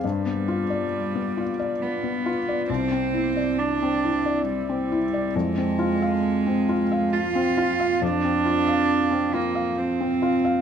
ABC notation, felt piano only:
X:1
M:3/4
L:1/16
Q:1/4=68
K:Fdor
V:1 name="Felt piano"
G,, =B, F d2 B, F d2 B, F d | C,, C =E d2 C E d2 C E d | F,, C F f2 C F f2 C F f | F,, C F f2 C F f2 C F f |]